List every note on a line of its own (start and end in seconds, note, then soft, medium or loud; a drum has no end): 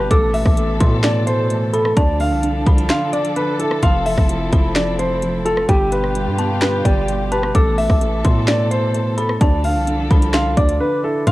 0.00 1.93 B2 medium
0.00 0.13 G3 loud
0.00 0.11 B3 medium
0.00 0.11 G4 medium
0.11 0.44 A1 loud
0.11 1.95 E3 medium
0.11 0.32 A3 medium
0.11 0.29 A4 loud
0.11 1.95 A4 loud
0.11 0.76 D6 loud
0.11 kick loud
0.11 closed hi-hat medium
0.34 0.56 A3 medium
0.34 1.00 E5 medium
0.34 open hi-hat medium
0.45 0.79 A1 loud
0.45 kick loud
0.45 cross-stick medium
0.57 1.02 A3 medium
0.57 closed hi-hat medium
0.80 1.93 A2 loud
0.80 1.97 B2 medium
0.80 1.69 C6 medium
0.80 kick loud
0.80 closed hi-hat medium
1.03 1.25 A3 loud
1.03 1.22 D5 medium
1.03 finger snap loud
1.03 snare loud
1.03 closed hi-hat medium
1.27 1.49 A3 medium
1.27 1.71 C5 medium
1.27 closed hi-hat medium
1.50 1.97 A3 medium
1.50 closed hi-hat medium
1.73 1.91 A4 medium
1.73 1.97 A4 medium
1.73 1.96 B5 medium
1.73 closed hi-hat medium
1.85 cross-stick loud
1.97 2.33 D2 loud
1.97 2.18 D3 medium
1.97 3.81 F3 medium
1.97 3.81 D4 medium
1.97 5.65 A4 loud
1.97 2.15 D5 medium
1.97 2.62 A5 loud
1.97 kick loud
1.97 closed hi-hat medium
2.19 2.42 D3 medium
2.19 2.86 F5 medium
2.19 open hi-hat medium
2.32 2.65 C2 loud
2.43 2.88 D3 medium
2.43 closed hi-hat medium
2.66 2.89 C2 loud
2.66 3.81 F3 medium
2.66 2.89 B5 medium
2.66 kick loud
2.66 closed hi-hat soft
2.78 closed hi-hat medium
2.90 3.12 D3 loud
2.90 3.08 F5 medium
2.90 3.12 C6 medium
2.90 finger snap loud
2.90 snare loud
2.90 closed hi-hat medium
3.13 3.35 D3 medium
3.13 3.31 D5 medium
3.13 3.79 D6 medium
3.13 closed hi-hat medium
3.25 closed hi-hat medium
3.36 3.83 D3 medium
3.36 3.54 B4 medium
3.36 closed hi-hat medium
3.59 3.83 E4 medium
3.59 3.78 A4 medium
3.59 closed hi-hat medium
3.71 cross-stick loud
3.83 4.16 F1 loud
3.83 4.05 F3 medium
3.83 5.67 F3 medium
3.83 5.67 C4 medium
3.83 5.67 E4 medium
3.83 4.01 F5 loud
3.83 4.49 C6 medium
3.83 kick loud
3.83 closed hi-hat medium
4.06 4.28 F3 medium
4.06 4.72 E5 medium
4.06 open hi-hat medium
4.18 4.51 F1 loud
4.18 kick loud
4.18 cross-stick medium
4.29 4.74 F3 medium
4.29 closed hi-hat medium
4.52 5.65 F1 loud
4.52 5.69 A3 medium
4.52 5.42 B5 medium
4.52 kick loud
4.52 closed hi-hat medium
4.75 4.97 F3 medium
4.75 4.94 D5 medium
4.75 finger snap loud
4.75 snare loud
4.75 closed hi-hat medium
4.99 5.21 F3 medium
4.99 5.43 C5 medium
4.99 closed hi-hat medium
5.22 5.69 F3 medium
5.22 closed hi-hat medium
5.45 5.69 F4 medium
5.45 5.64 A4 medium
5.45 5.68 A5 medium
5.45 closed hi-hat medium
5.57 cross-stick loud
5.69 6.28 G1 loud
5.69 9.37 B2 medium
5.69 7.53 D3 medium
5.69 5.91 G3 loud
5.69 7.53 F4 medium
5.69 7.53 G4 loud
5.69 5.87 G4 medium
5.69 6.35 G5 loud
5.69 kick loud
5.69 closed hi-hat loud
5.92 6.14 G3 medium
5.92 6.58 B4 medium
5.92 closed hi-hat medium
6.04 cross-stick medium
6.15 6.61 G3 medium
6.15 closed hi-hat medium
6.27 6.82 G2 loud
6.38 7.55 B3 medium
6.38 6.61 A5 medium
6.38 closed hi-hat medium
6.62 6.84 G3 medium
6.62 6.80 B4 medium
6.62 6.84 B5 loud
6.62 finger snap loud
6.62 snare loud
6.62 closed hi-hat medium
6.85 7.52 G1 loud
6.85 7.07 G3 medium
6.85 7.29 D5 medium
6.85 7.29 G5 medium
6.85 kick loud
6.85 closed hi-hat medium
7.08 7.55 G3 medium
7.08 closed hi-hat medium
7.32 7.55 G4 medium
7.32 7.50 B4 medium
7.32 7.54 A5 medium
7.32 closed hi-hat medium
7.43 cross-stick loud
7.55 7.88 A1 loud
7.55 9.39 E3 medium
7.55 7.76 A3 medium
7.55 7.73 A4 medium
7.55 9.39 A4 loud
7.55 8.21 D6 loud
7.55 kick loud
7.55 closed hi-hat medium
7.78 8.00 A3 medium
7.78 8.44 E5 medium
7.78 open hi-hat medium
7.90 8.23 A1 loud
7.90 kick loud
7.90 cross-stick medium
8.01 8.47 A3 medium
8.01 closed hi-hat medium
8.25 9.37 A2 loud
8.25 9.41 B2 medium
8.25 9.14 C6 medium
8.25 kick loud
8.25 closed hi-hat medium
8.48 8.70 A3 loud
8.48 8.66 D5 loud
8.48 finger snap loud
8.48 snare loud
8.48 closed hi-hat medium
8.71 8.93 A3 medium
8.71 9.15 C5 medium
8.71 closed hi-hat medium
8.94 9.41 A3 medium
8.94 closed hi-hat medium
9.17 9.36 A4 medium
9.17 9.41 A4 loud
9.17 9.40 B5 medium
9.17 closed hi-hat medium
9.29 cross-stick loud
9.41 9.77 D2 loud
9.41 9.62 D3 medium
9.41 11.25 F3 medium
9.41 11.25 D4 medium
9.41 11.25 A4 loud
9.41 9.59 D5 medium
9.41 10.07 A5 loud
9.41 kick loud
9.41 closed hi-hat medium
9.63 9.86 D3 medium
9.63 10.30 F5 medium
9.63 open hi-hat medium
9.76 10.09 C2 loud
9.87 10.32 D3 medium
9.87 closed hi-hat medium
10.11 10.55 C2 loud
10.11 11.25 F3 medium
10.11 10.33 B5 medium
10.11 kick loud
10.11 closed hi-hat soft
10.22 closed hi-hat medium
10.34 10.56 D3 loud
10.34 10.52 F5 medium
10.34 10.56 C6 medium
10.34 finger snap loud
10.34 snare loud
10.34 closed hi-hat medium
10.57 10.80 D2 loud
10.57 10.79 D3 medium
10.57 10.75 D5 medium
10.57 11.23 D6 medium
10.57 kick loud
10.57 closed hi-hat medium
10.69 closed hi-hat medium
10.80 11.27 D3 medium
10.80 10.99 B4 medium
11.03 11.27 E4 medium
11.03 11.22 A4 medium
11.27 11.32 F1 loud
11.27 11.32 F3 medium
11.27 11.32 F5 loud
11.27 11.32 C6 medium
11.27 kick loud
11.27 closed hi-hat loud